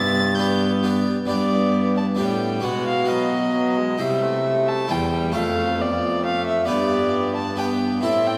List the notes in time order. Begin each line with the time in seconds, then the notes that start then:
Already playing: G2 B3 A6
0.35 B3 D4 G6
0.39 G4
0.83 B3 D4 G4
1.26 G2 B3 D4 G4 D5
1.97 A5
2.15 A2 G3 B3 D4 G4
2.19 A2 G5
2.60 B2 G#3 B3 F#4
2.64 F#5
2.88 F5
3.05 B3 F#4
3.10 F#3 D#5
3.54 F#3
3.76 G#3
3.98 C3 G3 E4 C5 E5
4.22 A3
4.43 A3
4.68 A5
4.88 E2 G3 E4 C5 G5
5.11 G3
5.32 F2 A3 A4 C5 F5
5.79 B3 D5
6.23 A3 F5
6.47 E5
6.65 G2 B3 G4 B4 D5
6.70 G2
7.36 A5
7.56 B3 G4 B4 G5
8.01 A2 C4 E4 A4 E5
8.27 G5